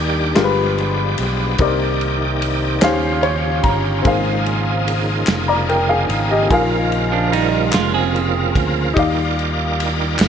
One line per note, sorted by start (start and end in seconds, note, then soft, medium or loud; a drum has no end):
0.00 0.32 D#2 medium
0.00 0.32 D#3 medium
0.00 0.35 D#3 medium
0.00 0.35 G3 medium
0.00 0.35 A#3 medium
0.00 0.36 D4 medium
0.00 0.36 D#4 medium
0.00 4.01 G4 medium
0.00 0.36 A#4 medium
0.00 1.57 D5 medium
0.35 1.14 G1 medium
0.35 1.55 G2 medium
0.35 1.57 F3 medium
0.35 1.59 G#3 medium
0.35 1.58 G#3 medium
0.35 1.57 B3 soft
0.35 1.59 F4 medium
0.35 1.59 G4 medium
0.35 0.43 A#4 medium
0.35 snare loud
0.35 clap medium
0.35 ride medium
0.44 1.63 B4 medium
0.78 ride soft
1.18 1.56 B1 medium
1.18 ride medium
1.58 2.78 C2 medium
1.58 2.78 C3 medium
1.58 2.81 D#3 medium
1.58 2.81 A#3 medium
1.58 2.82 C4 medium
1.58 2.82 D#4 medium
1.58 6.47 D#4 medium
1.58 2.83 A#4 medium
1.58 2.82 D5 medium
1.58 2.83 D5 medium
1.58 kick loud
1.58 ride medium
2.01 ride soft
2.42 ride medium
2.81 3.60 D#2 loud
2.81 8.92 C#3 medium
2.81 4.01 D#3 medium
2.81 4.05 C#4 medium
2.81 4.03 C#4 medium
2.81 10.28 F4 medium
2.81 4.05 G4 medium
2.81 4.05 C5 medium
2.81 4.06 F5 medium
2.81 snare loud
2.81 clap loud
2.81 ride medium
3.23 3.61 C#5 medium
3.23 ride soft
3.63 4.01 G1 medium
3.63 4.02 A#5 medium
3.63 kick medium
3.63 ride medium
4.02 5.24 G#1 loud
4.02 5.24 G#2 medium
4.02 8.93 A#3 medium
4.02 6.45 C4 medium
4.02 5.25 G#4 medium
4.02 6.48 G#4 medium
4.02 5.26 A#4 medium
4.02 kick loud
4.02 ride medium
4.07 5.26 F5 medium
4.46 ride soft
4.88 ride medium
5.27 6.06 F1 medium
5.27 snare loud
5.27 clap loud
5.27 ride medium
5.48 5.68 D5 medium
5.48 5.67 A#5 medium
5.69 5.88 A#4 medium
5.69 5.88 G5 medium
5.69 ride soft
5.89 6.28 G#4 medium
5.89 6.28 F5 medium
6.09 6.47 G#1 medium
6.09 ride medium
6.31 6.69 G4 medium
6.31 6.69 D#5 medium
6.48 7.69 A#1 medium
6.48 7.70 A#2 medium
6.48 8.94 F3 medium
6.48 8.91 D#4 medium
6.48 8.94 A#4 medium
6.48 8.93 A#4 medium
6.48 8.92 G#5 medium
6.48 kick loud
6.48 ride medium
6.54 8.94 F5 medium
6.92 ride soft
7.12 7.31 F3 medium
7.12 7.32 D4 medium
7.32 7.71 G3 medium
7.32 7.71 D#4 medium
7.32 ride medium
7.72 8.51 F1 medium
7.72 7.93 G#3 medium
7.72 7.93 F4 medium
7.72 snare loud
7.72 clap loud
7.72 ride medium
7.94 8.92 C4 medium
7.94 8.92 G#4 medium
8.16 ride soft
8.55 8.93 D2 medium
8.55 kick medium
8.55 ride medium
8.94 10.16 D#2 medium
8.94 10.15 D#3 medium
8.94 10.28 G3 medium
8.94 10.28 D#4 medium
8.94 10.28 G4 medium
8.94 10.28 A#4 medium
8.94 10.28 D5 medium
8.94 kick loud
8.94 ride medium
8.99 10.28 F5 medium
9.39 ride soft
9.80 ride medium
10.19 10.28 G1 loud
10.19 snare loud
10.19 clap medium
10.19 ride medium